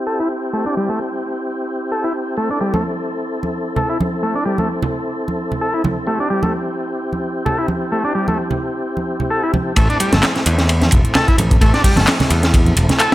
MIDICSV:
0, 0, Header, 1, 5, 480
1, 0, Start_track
1, 0, Key_signature, 0, "minor"
1, 0, Tempo, 461538
1, 558, Time_signature, 4, 2, 24, 8
1, 13672, End_track
2, 0, Start_track
2, 0, Title_t, "Tonewheel organ"
2, 0, Program_c, 0, 16
2, 0, Note_on_c, 0, 60, 65
2, 0, Note_on_c, 0, 64, 60
2, 0, Note_on_c, 0, 67, 72
2, 2460, Note_off_c, 0, 67, 0
2, 2464, Note_on_c, 0, 69, 74
2, 6299, Note_off_c, 0, 69, 0
2, 6310, Note_on_c, 0, 67, 73
2, 10118, Note_off_c, 0, 60, 0
2, 10119, Note_off_c, 0, 64, 0
2, 10142, Note_off_c, 0, 67, 0
2, 10147, Note_on_c, 0, 57, 70
2, 10150, Note_on_c, 0, 60, 64
2, 10151, Note_on_c, 0, 64, 77
2, 13672, Note_off_c, 0, 57, 0
2, 13672, Note_off_c, 0, 60, 0
2, 13672, Note_off_c, 0, 64, 0
2, 13672, End_track
3, 0, Start_track
3, 0, Title_t, "Transistor combo organ"
3, 0, Program_c, 1, 18
3, 69, Note_on_c, 1, 69, 90
3, 199, Note_off_c, 1, 69, 0
3, 206, Note_on_c, 1, 64, 70
3, 295, Note_off_c, 1, 64, 0
3, 555, Note_on_c, 1, 57, 97
3, 675, Note_off_c, 1, 57, 0
3, 688, Note_on_c, 1, 62, 72
3, 777, Note_off_c, 1, 62, 0
3, 799, Note_on_c, 1, 55, 97
3, 924, Note_off_c, 1, 55, 0
3, 930, Note_on_c, 1, 57, 73
3, 1033, Note_off_c, 1, 57, 0
3, 1994, Note_on_c, 1, 69, 93
3, 2121, Note_off_c, 1, 69, 0
3, 2123, Note_on_c, 1, 64, 70
3, 2214, Note_off_c, 1, 64, 0
3, 2471, Note_on_c, 1, 57, 95
3, 2593, Note_off_c, 1, 57, 0
3, 2607, Note_on_c, 1, 62, 70
3, 2696, Note_off_c, 1, 62, 0
3, 2713, Note_on_c, 1, 55, 96
3, 2840, Note_off_c, 1, 55, 0
3, 2848, Note_on_c, 1, 57, 74
3, 2952, Note_off_c, 1, 57, 0
3, 3916, Note_on_c, 1, 69, 93
3, 4042, Note_off_c, 1, 69, 0
3, 4048, Note_on_c, 1, 64, 71
3, 4137, Note_off_c, 1, 64, 0
3, 4398, Note_on_c, 1, 57, 95
3, 4516, Note_off_c, 1, 57, 0
3, 4529, Note_on_c, 1, 62, 70
3, 4617, Note_off_c, 1, 62, 0
3, 4634, Note_on_c, 1, 55, 94
3, 4761, Note_off_c, 1, 55, 0
3, 4773, Note_on_c, 1, 57, 74
3, 4874, Note_off_c, 1, 57, 0
3, 5838, Note_on_c, 1, 69, 92
3, 5963, Note_off_c, 1, 69, 0
3, 5970, Note_on_c, 1, 64, 71
3, 6058, Note_off_c, 1, 64, 0
3, 6316, Note_on_c, 1, 57, 98
3, 6436, Note_off_c, 1, 57, 0
3, 6449, Note_on_c, 1, 62, 74
3, 6537, Note_off_c, 1, 62, 0
3, 6555, Note_on_c, 1, 55, 98
3, 6682, Note_off_c, 1, 55, 0
3, 6689, Note_on_c, 1, 57, 72
3, 6792, Note_off_c, 1, 57, 0
3, 7755, Note_on_c, 1, 69, 94
3, 7881, Note_off_c, 1, 69, 0
3, 7885, Note_on_c, 1, 64, 71
3, 7975, Note_off_c, 1, 64, 0
3, 8236, Note_on_c, 1, 57, 95
3, 8356, Note_off_c, 1, 57, 0
3, 8366, Note_on_c, 1, 62, 73
3, 8455, Note_off_c, 1, 62, 0
3, 8474, Note_on_c, 1, 55, 100
3, 8601, Note_off_c, 1, 55, 0
3, 8611, Note_on_c, 1, 57, 75
3, 8714, Note_off_c, 1, 57, 0
3, 9678, Note_on_c, 1, 69, 95
3, 9803, Note_off_c, 1, 69, 0
3, 9812, Note_on_c, 1, 64, 70
3, 9899, Note_off_c, 1, 64, 0
3, 10159, Note_on_c, 1, 57, 101
3, 10277, Note_off_c, 1, 57, 0
3, 10293, Note_on_c, 1, 62, 79
3, 10379, Note_off_c, 1, 62, 0
3, 10401, Note_on_c, 1, 55, 104
3, 10525, Note_off_c, 1, 55, 0
3, 10531, Note_on_c, 1, 57, 78
3, 10634, Note_off_c, 1, 57, 0
3, 11598, Note_on_c, 1, 69, 100
3, 11723, Note_off_c, 1, 69, 0
3, 11731, Note_on_c, 1, 64, 79
3, 11818, Note_off_c, 1, 64, 0
3, 12078, Note_on_c, 1, 57, 104
3, 12197, Note_off_c, 1, 57, 0
3, 12209, Note_on_c, 1, 62, 77
3, 12297, Note_off_c, 1, 62, 0
3, 12317, Note_on_c, 1, 55, 101
3, 12442, Note_off_c, 1, 55, 0
3, 12445, Note_on_c, 1, 57, 81
3, 12551, Note_off_c, 1, 57, 0
3, 13517, Note_on_c, 1, 69, 100
3, 13642, Note_off_c, 1, 69, 0
3, 13672, End_track
4, 0, Start_track
4, 0, Title_t, "Picked electric bass"
4, 0, Program_c, 2, 34
4, 10161, Note_on_c, 2, 33, 103
4, 10257, Note_off_c, 2, 33, 0
4, 10532, Note_on_c, 2, 31, 86
4, 10611, Note_off_c, 2, 31, 0
4, 10882, Note_on_c, 2, 40, 88
4, 11314, Note_off_c, 2, 40, 0
4, 11362, Note_on_c, 2, 28, 86
4, 11457, Note_off_c, 2, 28, 0
4, 11836, Note_on_c, 2, 33, 86
4, 12020, Note_off_c, 2, 33, 0
4, 12077, Note_on_c, 2, 33, 102
4, 12174, Note_off_c, 2, 33, 0
4, 12452, Note_on_c, 2, 31, 86
4, 12531, Note_off_c, 2, 31, 0
4, 12799, Note_on_c, 2, 40, 88
4, 13233, Note_off_c, 2, 40, 0
4, 13276, Note_on_c, 2, 28, 86
4, 13374, Note_off_c, 2, 28, 0
4, 13672, End_track
5, 0, Start_track
5, 0, Title_t, "Drums"
5, 2847, Note_on_c, 9, 63, 84
5, 2951, Note_off_c, 9, 63, 0
5, 3567, Note_on_c, 9, 63, 59
5, 3671, Note_off_c, 9, 63, 0
5, 3914, Note_on_c, 9, 64, 82
5, 4018, Note_off_c, 9, 64, 0
5, 4165, Note_on_c, 9, 63, 88
5, 4269, Note_off_c, 9, 63, 0
5, 4766, Note_on_c, 9, 63, 76
5, 4870, Note_off_c, 9, 63, 0
5, 5017, Note_on_c, 9, 64, 89
5, 5121, Note_off_c, 9, 64, 0
5, 5491, Note_on_c, 9, 63, 58
5, 5595, Note_off_c, 9, 63, 0
5, 5737, Note_on_c, 9, 64, 65
5, 5841, Note_off_c, 9, 64, 0
5, 6076, Note_on_c, 9, 63, 85
5, 6080, Note_on_c, 9, 64, 84
5, 6180, Note_off_c, 9, 63, 0
5, 6184, Note_off_c, 9, 64, 0
5, 6685, Note_on_c, 9, 63, 90
5, 6789, Note_off_c, 9, 63, 0
5, 7411, Note_on_c, 9, 63, 56
5, 7515, Note_off_c, 9, 63, 0
5, 7759, Note_on_c, 9, 64, 88
5, 7863, Note_off_c, 9, 64, 0
5, 7990, Note_on_c, 9, 63, 83
5, 8094, Note_off_c, 9, 63, 0
5, 8609, Note_on_c, 9, 63, 87
5, 8713, Note_off_c, 9, 63, 0
5, 8846, Note_on_c, 9, 64, 82
5, 8950, Note_off_c, 9, 64, 0
5, 9327, Note_on_c, 9, 63, 57
5, 9431, Note_off_c, 9, 63, 0
5, 9567, Note_on_c, 9, 64, 75
5, 9671, Note_off_c, 9, 64, 0
5, 9917, Note_on_c, 9, 64, 84
5, 9918, Note_on_c, 9, 63, 76
5, 10021, Note_off_c, 9, 64, 0
5, 10022, Note_off_c, 9, 63, 0
5, 10153, Note_on_c, 9, 51, 91
5, 10158, Note_on_c, 9, 36, 109
5, 10163, Note_on_c, 9, 42, 45
5, 10257, Note_off_c, 9, 51, 0
5, 10262, Note_off_c, 9, 36, 0
5, 10267, Note_off_c, 9, 42, 0
5, 10295, Note_on_c, 9, 42, 22
5, 10398, Note_on_c, 9, 51, 70
5, 10399, Note_off_c, 9, 42, 0
5, 10402, Note_on_c, 9, 42, 77
5, 10502, Note_off_c, 9, 51, 0
5, 10506, Note_off_c, 9, 42, 0
5, 10531, Note_on_c, 9, 42, 33
5, 10531, Note_on_c, 9, 63, 90
5, 10532, Note_on_c, 9, 38, 62
5, 10633, Note_on_c, 9, 51, 92
5, 10635, Note_off_c, 9, 42, 0
5, 10635, Note_off_c, 9, 63, 0
5, 10636, Note_off_c, 9, 38, 0
5, 10640, Note_on_c, 9, 38, 103
5, 10641, Note_on_c, 9, 39, 109
5, 10641, Note_on_c, 9, 42, 44
5, 10737, Note_off_c, 9, 51, 0
5, 10744, Note_off_c, 9, 38, 0
5, 10745, Note_off_c, 9, 39, 0
5, 10745, Note_off_c, 9, 42, 0
5, 10771, Note_on_c, 9, 42, 23
5, 10775, Note_on_c, 9, 38, 46
5, 10875, Note_off_c, 9, 42, 0
5, 10878, Note_on_c, 9, 42, 82
5, 10879, Note_off_c, 9, 38, 0
5, 10886, Note_on_c, 9, 51, 69
5, 10982, Note_off_c, 9, 42, 0
5, 10990, Note_off_c, 9, 51, 0
5, 11007, Note_on_c, 9, 38, 47
5, 11010, Note_on_c, 9, 42, 33
5, 11111, Note_off_c, 9, 38, 0
5, 11114, Note_off_c, 9, 42, 0
5, 11118, Note_on_c, 9, 51, 91
5, 11119, Note_on_c, 9, 42, 44
5, 11222, Note_off_c, 9, 51, 0
5, 11223, Note_off_c, 9, 42, 0
5, 11248, Note_on_c, 9, 42, 23
5, 11254, Note_on_c, 9, 38, 47
5, 11256, Note_on_c, 9, 63, 67
5, 11345, Note_on_c, 9, 51, 66
5, 11352, Note_off_c, 9, 42, 0
5, 11357, Note_on_c, 9, 42, 78
5, 11358, Note_off_c, 9, 38, 0
5, 11360, Note_off_c, 9, 63, 0
5, 11363, Note_on_c, 9, 36, 103
5, 11449, Note_off_c, 9, 51, 0
5, 11461, Note_off_c, 9, 42, 0
5, 11467, Note_off_c, 9, 36, 0
5, 11489, Note_on_c, 9, 42, 34
5, 11593, Note_off_c, 9, 42, 0
5, 11593, Note_on_c, 9, 51, 78
5, 11597, Note_on_c, 9, 39, 109
5, 11597, Note_on_c, 9, 42, 45
5, 11598, Note_on_c, 9, 38, 115
5, 11600, Note_on_c, 9, 64, 89
5, 11697, Note_off_c, 9, 51, 0
5, 11701, Note_off_c, 9, 39, 0
5, 11701, Note_off_c, 9, 42, 0
5, 11702, Note_off_c, 9, 38, 0
5, 11704, Note_off_c, 9, 64, 0
5, 11731, Note_on_c, 9, 42, 22
5, 11734, Note_on_c, 9, 36, 88
5, 11835, Note_off_c, 9, 42, 0
5, 11838, Note_off_c, 9, 36, 0
5, 11838, Note_on_c, 9, 51, 72
5, 11839, Note_on_c, 9, 42, 79
5, 11849, Note_on_c, 9, 63, 98
5, 11942, Note_off_c, 9, 51, 0
5, 11943, Note_off_c, 9, 42, 0
5, 11953, Note_off_c, 9, 63, 0
5, 11973, Note_on_c, 9, 42, 32
5, 11974, Note_on_c, 9, 36, 104
5, 12075, Note_off_c, 9, 36, 0
5, 12075, Note_on_c, 9, 36, 104
5, 12077, Note_off_c, 9, 42, 0
5, 12077, Note_on_c, 9, 51, 88
5, 12080, Note_on_c, 9, 42, 45
5, 12179, Note_off_c, 9, 36, 0
5, 12181, Note_off_c, 9, 51, 0
5, 12184, Note_off_c, 9, 42, 0
5, 12208, Note_on_c, 9, 38, 44
5, 12210, Note_on_c, 9, 42, 22
5, 12312, Note_off_c, 9, 38, 0
5, 12313, Note_on_c, 9, 36, 87
5, 12314, Note_off_c, 9, 42, 0
5, 12317, Note_on_c, 9, 42, 80
5, 12321, Note_on_c, 9, 46, 79
5, 12417, Note_off_c, 9, 36, 0
5, 12421, Note_off_c, 9, 42, 0
5, 12425, Note_off_c, 9, 46, 0
5, 12442, Note_on_c, 9, 63, 92
5, 12449, Note_on_c, 9, 42, 34
5, 12455, Note_on_c, 9, 38, 55
5, 12546, Note_off_c, 9, 63, 0
5, 12553, Note_off_c, 9, 42, 0
5, 12556, Note_on_c, 9, 39, 112
5, 12556, Note_on_c, 9, 42, 45
5, 12559, Note_off_c, 9, 38, 0
5, 12559, Note_on_c, 9, 51, 90
5, 12565, Note_on_c, 9, 38, 108
5, 12660, Note_off_c, 9, 39, 0
5, 12660, Note_off_c, 9, 42, 0
5, 12663, Note_off_c, 9, 51, 0
5, 12669, Note_off_c, 9, 38, 0
5, 12688, Note_on_c, 9, 42, 22
5, 12689, Note_on_c, 9, 64, 103
5, 12697, Note_on_c, 9, 38, 56
5, 12792, Note_off_c, 9, 42, 0
5, 12793, Note_off_c, 9, 64, 0
5, 12796, Note_on_c, 9, 51, 65
5, 12797, Note_on_c, 9, 42, 81
5, 12801, Note_off_c, 9, 38, 0
5, 12900, Note_off_c, 9, 51, 0
5, 12901, Note_off_c, 9, 42, 0
5, 12929, Note_on_c, 9, 42, 33
5, 12931, Note_on_c, 9, 38, 53
5, 13033, Note_off_c, 9, 42, 0
5, 13035, Note_off_c, 9, 38, 0
5, 13039, Note_on_c, 9, 36, 116
5, 13040, Note_on_c, 9, 42, 46
5, 13045, Note_on_c, 9, 51, 85
5, 13143, Note_off_c, 9, 36, 0
5, 13144, Note_off_c, 9, 42, 0
5, 13149, Note_off_c, 9, 51, 0
5, 13169, Note_on_c, 9, 63, 75
5, 13171, Note_on_c, 9, 42, 23
5, 13273, Note_off_c, 9, 63, 0
5, 13275, Note_off_c, 9, 42, 0
5, 13278, Note_on_c, 9, 42, 78
5, 13281, Note_on_c, 9, 51, 65
5, 13382, Note_off_c, 9, 42, 0
5, 13385, Note_off_c, 9, 51, 0
5, 13404, Note_on_c, 9, 64, 87
5, 13409, Note_on_c, 9, 42, 35
5, 13414, Note_on_c, 9, 38, 48
5, 13508, Note_off_c, 9, 64, 0
5, 13512, Note_on_c, 9, 51, 87
5, 13513, Note_off_c, 9, 42, 0
5, 13518, Note_off_c, 9, 38, 0
5, 13519, Note_on_c, 9, 39, 111
5, 13519, Note_on_c, 9, 42, 43
5, 13616, Note_off_c, 9, 51, 0
5, 13623, Note_off_c, 9, 39, 0
5, 13623, Note_off_c, 9, 42, 0
5, 13672, End_track
0, 0, End_of_file